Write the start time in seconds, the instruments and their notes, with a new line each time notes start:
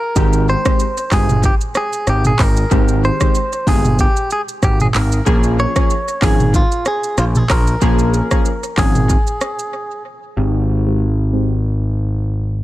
Already playing: clean electric guitar A#4
0.16 picked electric bass G#1, synth keys D#3 G#3 C4 G4, kick, shaker
0.33 shaker
0.49 clean electric guitar C5
0.65 synth keys D#3 G#3 C4 G4, kick, cross-stick, shaker
0.80 shaker
0.97 shaker
1.11 picked electric bass G1, synth keys D#3 G#3 C4 G4, clean electric guitar G#4, kick, cross-stick, clap, open hi-hat, shaker
1.29 mid tom, shaker
1.43 clean electric guitar G4, kick, shaker
1.61 shaker
1.75 clean electric guitar G#4, cross-stick, shaker
1.93 shaker
2.07 picked electric bass G#1, clean electric guitar G4, cross-stick, shaker
2.25 clean electric guitar G#4, mid tom, shaker
2.39 picked electric bass G#1, clean electric guitar A#4, kick, cross-stick, clap, open hi-hat
2.57 shaker
2.71 picked electric bass G#1, synth keys D#3 G#3 C4 G4, kick, shaker
2.88 shaker
3.05 clean electric guitar C5
3.20 synth keys D#3 G#3 C4 G4, kick, cross-stick, shaker
3.35 shaker
3.53 shaker
3.67 picked electric bass G1, synth keys D#3 G#3 C4 G4, clean electric guitar G#4, kick, open hi-hat, shaker
3.85 mid tom, shaker
3.99 clean electric guitar G4, kick, shaker
4.17 shaker
4.30 clean electric guitar G#4, shaker
4.49 shaker
4.63 picked electric bass G#1, clean electric guitar G4, kick, cross-stick, shaker
4.80 clean electric guitar G#4, mid tom, shaker
4.94 picked electric bass G#1, clean electric guitar A#4, clap, open hi-hat
5.12 shaker
5.26 picked electric bass A#1, synth keys F3 A#3 C#4 G#4, kick, shaker
5.43 shaker
5.60 clean electric guitar C#5
5.75 synth keys F3 A#3 C#4 G#4, kick, cross-stick, shaker
5.90 shaker
6.08 shaker
6.22 picked electric bass G#1, synth keys F3 A#3 C#4 G#4, clean electric guitar G#4, kick, cross-stick, clap, open hi-hat, shaker
6.40 mid tom, shaker
6.54 clean electric guitar F4, kick, shaker
6.72 shaker
6.85 clean electric guitar G#4, cross-stick, shaker
7.04 shaker
7.18 picked electric bass A#1, clean electric guitar F4, cross-stick, shaker
7.35 clean electric guitar G#4, mid tom, shaker
7.50 picked electric bass A#1, clean electric guitar A#4, kick, cross-stick, clap, open hi-hat
7.67 shaker
7.81 picked electric bass A#1, synth keys F3 A#3 C#4 G#4, kick, shaker
7.99 shaker
8.14 shaker
8.31 synth keys F3 A#3 C#4 G#4, kick, cross-stick, shaker
8.45 shaker
8.63 shaker
8.77 picked electric bass G#1, synth keys F3 A#3 C#4 G#4, clean electric guitar G#4, kick, cross-stick, clap, open hi-hat, shaker
8.95 mid tom, shaker
9.09 kick, shaker
9.27 shaker
9.41 cross-stick, shaker
9.59 shaker
10.37 picked electric bass G#1, synth keys D#3 G#3 C4 G4
10.86 synth keys D#3 G#3 C4 G4
11.33 synth keys D#3 G#3 C4 G4